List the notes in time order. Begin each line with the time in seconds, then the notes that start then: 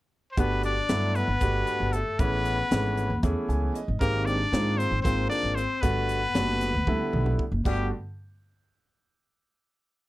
0.32 C5
0.37 G1 A3 B3 D4 F#4 G4 B4, kick, closed hi-hat
0.63 D4 D5, closed hi-hat
0.89 G2 F#3 A3 B3 D4 E4, snare, closed hi-hat
1.15 B3 B4, closed hi-hat
1.28 G1
1.41 G1 A3 B3 D4 F#4 G4, kick, closed hi-hat
1.67 closed hi-hat
1.80 G1
1.93 A3 A4, closed hi-hat
2.19 A1 E3 A3 B3 C#4 G#4 B4, kick, closed hi-hat
2.45 closed hi-hat
2.71 G#1 E3 A3 B3 C#4 G#4, snare, closed hi-hat
2.98 closed hi-hat
3.10 E2
3.23 E2 E3 A3 B3 C#4 G#4, kick, closed hi-hat
3.48 C#2 G#5, closed hi-hat
3.75 D#5, closed hi-hat
3.88 G#1
4.00 G#1 D#3 G#3 A#3 C4 G4 A#4, kick, closed hi-hat
4.25 D4 D5, closed hi-hat
4.52 G#2 D#3 G#3 A#3 C4 F4, snare, closed hi-hat
4.78 C4 C5, closed hi-hat
4.91 G#1
5.03 G#1 D#3 G#3 A#3 C4 F4 C5, kick, closed hi-hat
5.29 D4 D5, closed hi-hat
5.43 G#1
5.55 C4 C5, closed hi-hat
5.81 G1 D3 G3 A3 B3 F#4 B4, kick, closed hi-hat
6.09 closed hi-hat
6.34 F#1 D3 G3 A3 B3 F#4, snare, closed hi-hat
6.61 snare, closed hi-hat
6.74 D2
6.87 D2 D3 G3 A3 B3 E4, kick, high tom
7.13 B1, mid tom
7.26 mid tom
7.39 kick
7.51 F#1
7.65 G1 D3 G3 A3 B3 F#4 G4, kick, crash